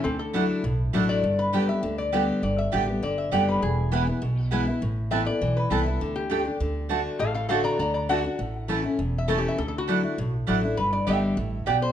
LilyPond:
<<
  \new Staff \with { instrumentName = "Resonator guitar played with a steel bar" } { \time 4/4 \key g \major \tempo 4 = 201 <c' a'>8 a'4 r2 d''8~ | d''8 b'4 e''4 d''8 r4 | d''8 e''4. d''8 e''8 d''8 b'8 | gis'2. r4 |
r4 e''8 d''4 b'8 a'4~ | a'8 g'4. r2 | <a' f''>8 <a' f''>8 <a' f''>8 <d'' bes''>8 <d'' bes''>8 <d'' bes''>8 fis''4~ | fis''2 \tuplet 3/2 { r4 e''8 a'8 g'8 e''8 } |
\tuplet 3/2 { a'8 a'8 fis'8~ } fis'4. r4. | b'8 d''8 e''2 d''8 c''8 | }
  \new Staff \with { instrumentName = "Mandolin" } { \time 4/4 \key g \major r4 <a e' d'' fis''>8 r4. <a e' d'' fis''>8 r8 | r4 <b g' d'' g''>8 r4. <b g' d'' g''>8 r8 | r4 <b g' d'' g''>8 r4. <b g' d'' g''>8 r8 | r4 <b e' b' gis''>8 r4. <b e' b' gis''>8 r8 |
r4 <c' e' b' a''>8 r4. <c' e' b' a''>8 r8 | r4 <a g' d'' g''>8 r4. <a fis' d'' a''>8 r8 | r4 <a fis' d'' a''>8 r4. <a fis' d'' a''>8 r8 | r4 <a e' cis'' a''>8 r4. <a e' cis'' a''>8 r8 |
r4 <a e' d'' fis''>8 r4. <a e' d'' fis''>8 r8 | r4 <b g' d'' g''>8 r4. <b g' d'' g''>8 r8 | }
  \new Staff \with { instrumentName = "Steel-string acoustic guitar" } { \time 4/4 \key g \major << { r4 <fis a d' e'>4 r4 <fis a d' e'>4 | r4 <d g b g'>8 <b g'>8 r4 <d g b g'>4 | r4 <d g b g'>8 <b g'>8 r4 <d g b g'>4 | r4 <e gis b e'>8 <b e'>8 r4 <e gis b e'>8 <b e'>8 |
r4 <e a b e'>8 <b e'>8 r4 <e a b e'>8 <b e'>8 | r4 <d a d' g'>8 <d' g'>8 r4 <d a d' fis'>4 | r4 <d a d' fis'>4 r4 <d a d' fis'>8 <d' fis'>8 | r4 <e a cis' e'>8 <cis' e'>8 r4 <e a cis' e'>4 |
r4 <fis a d' e'>8 <d' e'>8 r4 <fis a d' e'>8 <d' e'>8 | r4 <d g b g'>4 r2 | } \\ { d2 a,2 | g,2 d2 | g,2 d2 | e,2 b,2 |
a,2 e2 | d2 d2 | a,2 d2 | a,2 e,2 |
d2 a,2 | g,2 a,4 b,4 | } >> }
  \new Staff \with { instrumentName = "Upright bass" } { \clef bass \time 4/4 \key g \major d,2 b,,4 a,,4 | g,,2 d,2 | g,,4 a,,4 g,,4 fis,,4 | e,,2 b,,2 |
a,,2 b,,4 c,4 | d,2 d,2 | a,,2 d,2 | a,,2 e,,2 |
d,2 b,,4 a,,4 | g,,4 g,,4 a,,4 b,,4 | }
>>